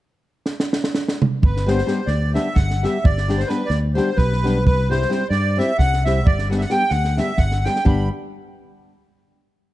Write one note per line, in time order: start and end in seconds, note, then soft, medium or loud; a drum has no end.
0.46 snare medium
0.60 snare medium
0.73 snare medium
0.84 snare medium
0.95 snare medium
1.08 snare medium
1.22 mid tom medium
1.42 1.81 G1 medium
1.42 1.69 B4 medium
1.42 kick medium
1.57 snare soft
1.66 1.79 G3 medium
1.66 1.79 B3 medium
1.66 1.79 D4 soft
1.66 1.80 G4 medium
1.66 2.09 C5 medium
1.66 snare soft
1.78 snare soft
1.86 1.99 G3 medium
1.86 1.99 B3 soft
1.86 1.99 D4 soft
1.86 2.00 G4 medium
1.86 snare soft
2.06 2.37 D2 medium
2.06 2.33 D5 medium
2.06 snare soft
2.34 2.47 G3 soft
2.34 2.47 B3 soft
2.34 2.48 D4 medium
2.34 2.48 G4 medium
2.34 2.57 E5 medium
2.34 snare soft
2.55 2.85 G1 medium
2.55 2.84 F#5 medium
2.55 kick medium
2.55 snare soft
2.71 snare soft
2.83 2.96 G3 soft
2.83 2.96 B3 soft
2.83 2.96 D4 soft
2.83 2.97 G4 medium
2.83 3.05 E5 medium
2.83 snare soft
3.04 3.43 G1 medium
3.04 3.40 D5 medium
3.04 kick medium
3.18 snare soft
3.28 3.41 G3 medium
3.28 3.41 B3 soft
3.28 3.41 D4 soft
3.28 3.41 G4 medium
3.28 snare soft
3.38 3.49 C5 medium
3.38 snare soft
3.47 3.61 G3 soft
3.47 3.61 B3 soft
3.47 3.61 D4 medium
3.47 3.62 G4 medium
3.47 3.69 B4 medium
3.47 snare soft
3.66 3.79 D5 medium
3.70 3.99 D2 medium
3.70 snare soft
3.94 4.08 G3 medium
3.94 4.09 B3 soft
3.94 4.09 D4 medium
3.94 4.10 G4 medium
3.94 4.17 C5 medium
3.94 snare soft
4.16 4.66 B1 medium
4.16 4.64 B4 medium
4.16 kick soft
4.16 snare soft
4.33 snare soft
4.44 4.57 G3 medium
4.44 4.57 B3 medium
4.44 4.57 D4 soft
4.44 4.58 G4 medium
4.44 snare soft
4.66 5.04 C2 medium
4.66 4.89 B4 medium
4.66 kick medium
4.89 5.02 G3 medium
4.89 5.02 C4 medium
4.89 5.03 E4 medium
4.89 5.03 G4 medium
4.89 5.27 C5 medium
4.89 snare soft
5.02 snare soft
5.09 5.22 G3 medium
5.09 5.22 C4 medium
5.09 5.22 E4 soft
5.09 5.22 G4 medium
5.09 snare soft
5.29 5.59 G2 medium
5.29 5.58 D5 medium
5.29 snare soft
5.57 5.70 G3 medium
5.57 5.70 C4 medium
5.57 5.70 E4 medium
5.57 5.71 G4 medium
5.57 5.77 E5 medium
5.57 snare soft
5.78 6.26 C2 medium
5.78 6.04 F#5 loud
5.78 kick soft
5.78 snare soft
5.94 snare soft
6.05 6.18 G3 medium
6.05 6.18 C4 medium
6.05 6.18 E4 soft
6.05 6.19 G4 medium
6.05 6.27 E5 medium
6.05 snare soft
6.25 6.64 G1 medium
6.25 6.49 D5 medium
6.25 kick medium
6.39 snare soft
6.50 6.62 G3 medium
6.50 6.63 B3 soft
6.50 6.63 D4 soft
6.50 6.63 G4 medium
6.50 6.55 F#5 medium
6.50 snare soft
6.58 6.62 E5 medium
6.58 snare soft
6.62 6.70 F#5 medium
6.70 6.82 G3 soft
6.70 6.82 B3 soft
6.70 6.83 D4 soft
6.70 6.83 G4 medium
6.70 6.91 G5 medium
6.70 snare soft
6.89 7.20 D2 medium
6.89 7.18 F#5 loud
6.89 snare soft
7.05 snare soft
7.17 7.30 G3 soft
7.17 7.30 B3 soft
7.17 7.30 D4 medium
7.17 7.31 G4 medium
7.17 7.39 E5 medium
7.17 snare soft
7.37 7.66 G1 medium
7.37 7.66 F#5 loud
7.37 kick medium
7.37 snare soft
7.52 snare soft
7.65 7.78 G3 medium
7.65 7.78 B3 soft
7.65 7.78 D4 soft
7.65 7.78 G4 medium
7.65 7.84 G5 medium
7.65 snare soft
7.76 snare soft
7.85 8.08 G1 medium
7.85 8.08 G3 medium
7.85 8.08 B3 medium
7.85 8.08 D4 medium
7.85 8.08 G4 medium
7.85 8.09 B5 medium
7.85 kick medium